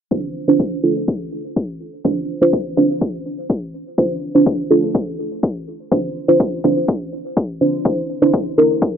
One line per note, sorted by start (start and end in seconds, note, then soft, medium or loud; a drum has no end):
0.11 0.45 D4 medium
0.11 0.45 F4 medium
0.11 0.45 C5 medium
0.11 kick loud
0.48 0.81 D4 medium
0.48 0.81 F4 medium
0.48 0.81 C5 loud
0.60 kick loud
0.83 2.02 D4 medium
0.83 2.02 F4 medium
0.83 2.02 A4 medium
1.08 kick loud
1.56 kick loud
2.04 2.39 D4 medium
2.04 2.39 F4 medium
2.04 2.38 C5 medium
2.04 kick loud
2.41 2.75 D4 medium
2.41 2.75 F4 medium
2.41 2.75 C5 loud
2.53 kick loud
2.77 3.96 D4 medium
2.77 3.95 F4 medium
2.77 3.96 C5 medium
2.77 kick medium
3.01 kick loud
3.50 kick loud
3.98 4.32 D4 medium
3.98 4.32 F4 medium
3.98 4.32 C5 medium
3.98 kick loud
4.35 4.68 D4 medium
4.35 4.68 F4 medium
4.35 4.68 C5 medium
4.46 kick loud
4.70 5.89 D4 medium
4.70 5.89 F4 medium
4.70 5.89 A4 medium
4.95 kick loud
5.43 kick loud
5.91 6.26 D4 medium
5.91 6.26 F4 medium
5.91 6.25 C5 medium
5.91 kick loud
6.28 6.62 D4 medium
6.28 6.62 F4 medium
6.28 6.61 C5 loud
6.40 kick loud
6.64 7.59 D4 medium
6.64 7.59 F4 medium
6.64 7.59 C5 medium
6.64 kick medium
6.88 kick loud
7.37 kick loud
7.61 7.83 D4 medium
7.61 7.83 F4 medium
7.61 7.83 C5 medium
7.85 8.19 D4 medium
7.85 8.19 E4 medium
7.85 8.19 C5 medium
7.85 kick loud
8.22 8.55 D4 medium
8.22 8.55 E4 medium
8.22 8.55 C5 medium
8.34 kick loud
8.58 8.97 D4 medium
8.58 8.97 E4 medium
8.58 8.97 A#4 medium
8.82 kick loud